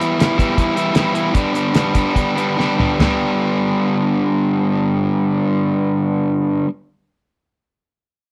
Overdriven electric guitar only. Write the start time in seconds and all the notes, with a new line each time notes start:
Already playing: E3
0.00 G3 B3 E4
0.19 E3 G3 B3 E4
0.38 E3 G3 B3 E4
0.58 E3 G3 B3 E4
0.76 G3 B3 E4
0.94 E3 G3 B3 E4
1.13 G3 B3 E4
1.33 D3 G3 B3 D4
1.53 G3 B3 D4
1.73 D3 G3 B3 D4
1.93 D3 G3 B3 D4
2.14 D3 G3 B3 D4
2.36 G3 B3 D4
2.57 D3 G3 B3 D4
2.78 G3 B3 D4
3.00 G2 D3 G3 B3 D4